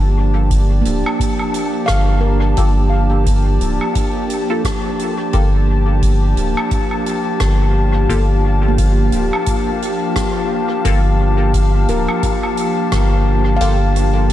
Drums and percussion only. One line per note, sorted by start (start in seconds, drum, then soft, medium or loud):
0.51 kick loud
0.51 closed hi-hat medium
0.85 closed hi-hat soft
1.06 low woodblock medium
1.20 kick loud
1.20 closed hi-hat medium
1.39 low woodblock medium
1.54 closed hi-hat medium
1.88 kick loud
1.88 cross-stick medium
1.88 closed hi-hat medium
2.57 kick loud
2.57 closed hi-hat medium
3.26 kick loud
3.26 closed hi-hat medium
3.61 closed hi-hat soft
3.81 low woodblock medium
3.95 kick loud
3.95 closed hi-hat medium
4.30 closed hi-hat soft
4.64 kick loud
4.64 cross-stick medium
4.64 closed hi-hat medium
4.99 closed hi-hat soft
5.33 kick loud
5.33 closed hi-hat medium
6.02 kick loud
6.02 closed hi-hat medium
6.37 closed hi-hat soft
6.57 low woodblock medium
6.71 kick loud
6.71 closed hi-hat medium
6.91 low woodblock medium
7.06 closed hi-hat soft
7.40 kick loud
7.40 cross-stick medium
7.40 closed hi-hat medium
8.09 kick loud
8.09 closed hi-hat medium
8.78 kick loud
8.78 closed hi-hat medium
9.12 closed hi-hat soft
9.33 low woodblock medium
9.46 kick loud
9.46 closed hi-hat medium
9.82 closed hi-hat soft
10.16 kick loud
10.16 cross-stick medium
10.16 closed hi-hat medium
10.85 kick loud
10.85 closed hi-hat medium
11.54 kick loud
11.54 closed hi-hat medium
11.88 closed hi-hat soft
12.09 low woodblock medium
12.23 kick loud
12.23 closed hi-hat medium
12.43 low woodblock medium
12.57 closed hi-hat soft
12.92 kick loud
12.92 cross-stick medium
12.92 closed hi-hat medium
13.61 closed hi-hat medium
13.96 closed hi-hat soft
14.30 closed hi-hat medium